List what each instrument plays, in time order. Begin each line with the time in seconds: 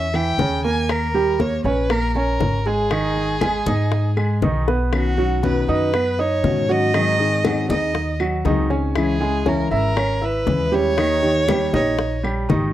Already playing: upright bass E2, violin E5
0.14 grand piano E3 E4, violin G5, high bongo, high conga, claves
0.38 upright bass D#2, grand piano C#3 C#4, high bongo, low bongo, high conga
0.64 grand piano A#3 A#4, violin G#5, high bongo, high conga
0.89 violin A#4, high bongo, high conga, claves
1.14 grand piano G3 G4, high conga
1.39 grand piano A#3 A#4, violin C#5, high bongo, high conga
1.64 upright bass A#1, grand piano C#4 C#5, violin B4, high bongo, high conga
1.90 grand piano A#3 A#4, violin A#4, high bongo, high conga, claves
2.15 grand piano C#4 C#5, violin A#4, high bongo, high conga
2.40 upright bass G#1, high bongo, low bongo, high conga
2.66 grand piano G#3 G#4, violin G#4, high bongo, high conga
2.91 grand piano D#3 D#4, high bongo, high conga, claves
3.16 high conga
3.41 grand piano G#3 G#4, high bongo, high conga, claves
3.66 upright bass G#2, grand piano D#4 D#5, high bongo, high conga
3.92 high bongo, high conga
4.17 grand piano G#3 G#4, high bongo, high conga, claves
4.42 upright bass B1, grand piano D#3 D#4, high bongo, low bongo, high conga
4.67 grand piano B3 B4, high bongo, high conga
4.92 nylon-string guitar B2 D#3 C#4 F#4, violin F#4, high bongo, high conga, claves
5.17 nylon-string guitar D#3 C#4 F#4, grand piano F#3 F#4, high conga
5.43 nylon-string guitar B2 D#3 C#4 F#4, grand piano B3 B4, violin B4, high bongo, high conga
5.68 upright bass F#2, nylon-string guitar D#3 C#4 F#4, grand piano D#4 D#5, violin B4, high bongo, high conga
5.93 grand piano B3 B4, muted nylon-string guitar stroke, high bongo, high conga, claves
6.19 grand piano D#4 D#5, violin C#5, high bongo, high conga
6.43 upright bass G#2, nylon-string guitar B2 D#3 C#4 F#4, high bongo, low bongo, high conga
6.69 nylon-string guitar D#3 C#4 F#4, grand piano F#3 F#4, violin D#5, high bongo, high conga
6.94 nylon-string guitar D#3 F#3 C4 D#4 G#4, grand piano D#3 D#4, high bongo, high conga, claves
7.19 nylon-string guitar C4 D#4 G#4, high conga
7.44 nylon-string guitar D#3 F#3 C4 D#4 G#4, grand piano F#3 F#4, high bongo, high conga, claves
7.69 upright bass D#2, nylon-string guitar C4 D#4 G#4, grand piano D#4 D#5, violin D#5, high bongo, high conga
7.95 muted nylon-string guitar stroke, high bongo, high conga
8.20 grand piano F#3 F#4, high bongo, high conga, claves
8.45 upright bass C#2, nylon-string guitar D#3 F#3 C4 D#4 G#4, grand piano D#3 D#4, high bongo, low bongo, high conga
8.70 nylon-string guitar C4 D#4 G#4, grand piano C#4 C#5, high bongo, high conga
8.95 nylon-string guitar C#3 E3 G#3 C#4 E4, violin G#4, high bongo, high conga, claves
9.20 grand piano G#3 G#4, nylon-string guitar G#3 C#4 E4, high conga
9.45 nylon-string guitar C#3 E3 G#3 C#4 E4, grand piano C#4 C#5, violin A#4, high bongo, high conga
9.71 upright bass G#1, nylon-string guitar G#3 C#4 E4, grand piano E4 E5, violin A#4, high bongo, high conga
9.96 grand piano C#4 C#5, muted nylon-string guitar stroke, high bongo, high conga, claves
10.21 grand piano E4 E5, violin B4, high bongo, high conga
10.46 upright bass D#2, nylon-string guitar C#3 E3 G#3 C#4 E4, high bongo, low bongo, high conga
10.72 grand piano G3 G4, nylon-string guitar G#3 C#4 E4, violin C#5, high bongo, high conga
10.97 grand piano D#3 D#4, nylon-string guitar D#3 A#3 D#4 G4, high bongo, high conga, claves
11.22 nylon-string guitar A#3 D#4 G4, high conga
11.47 nylon-string guitar D#3 A#3 D#4 G4, grand piano G3 G4, high bongo, high conga, claves
11.73 upright bass A#1, nylon-string guitar A#3 D#4 G4, grand piano D#4 D#5, violin C#5, high bongo, high conga
11.98 muted nylon-string guitar stroke, high bongo, high conga
12.23 grand piano G3 G4, high bongo, high conga, claves
12.49 upright bass G#1, nylon-string guitar D#3 A#3 D#4 G4, grand piano D#3 D#4, high bongo, low bongo, high conga